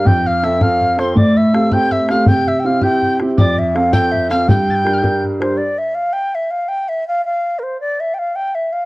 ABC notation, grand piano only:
X:1
M:6/8
L:1/8
Q:3/8=108
K:Gdor
V:1 name="Grand piano"
F,,2 [CFA] [CFA]2 [CFA] | A,,2 [CGA] [CGA]2 [CGA] | C,2 [CEG] [CEG]2 [CEG] | F,,2 [CFA] [CFA]2 [CFA] |
G,,2 [DGB] [DGB]2 [DGB] | z6 | z6 | z6 |]